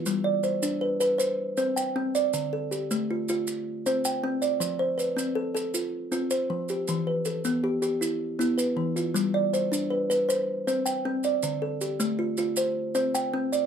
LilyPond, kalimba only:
\new Staff \with { instrumentName = "Kalimba" } { \time 12/8 \key g \mixolydian \tempo 4. = 105 << { f'8 d''8 c''4 b'4 c''4 c''8 g''4 d''8~ | d''8 a'8 g'4 f'4. r8 c''8 g''4 d''8~ | d''8 c''8 b'4 a'4 f'4 f'8 c''4 g'8~ | g'8 b'8 a'4 g'4 e'4 e'8 b'4 f'8~ |
f'8 d''8 c''4 b'4 c''4 c''8 g''4 d''8~ | d''8 a'8 g'4 f'4 c''4 c''8 g''4 d''8 | } \\ { g4 r8 d'4 b'8 r4 c'4 c'4 | d4 r8 a4 f'8 r4 c'4 c'4 | f4 r8 c'4 a'4 r8 c'4 f4 | e4 r8 b4 g'4 r8 b4 e4 |
g4 r8 d'4 b'8 r4 c'4 c'4 | d4 r8 a4 f'8 r4 c'4 c'4 | } >> }